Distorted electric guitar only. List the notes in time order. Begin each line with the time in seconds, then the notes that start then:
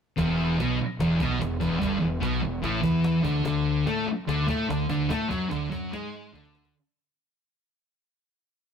0.17 E2
0.58 B2
0.79 muted distorted electric guitar stroke
1.00 E2
1.21 B2
1.39 E2
1.60 E2
1.79 G2
1.99 E2
2.20 B2
2.41 E2
2.62 A2
2.82 E3
3.23 D3
3.45 D3
3.86 A3
4.07 muted distorted electric guitar stroke
4.28 D3
4.47 A3
4.69 D3
4.90 D3
5.10 A3
5.29 F#3
5.50 D3
5.71 F#3
5.91 G#3
6.33 D3